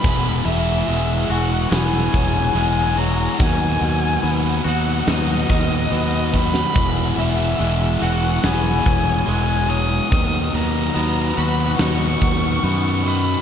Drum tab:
CC |x---------------|----------------|x---------------|----------------|
HH |----o---o---o---|o---o---o---o---|----o---o---o---|o---o---o---o---|
SD |--------o-------|--------o------o|--------o-------|--------o-------|
BD |o---------o-----|o---------o---o-|o---------o-----|o---------o-----|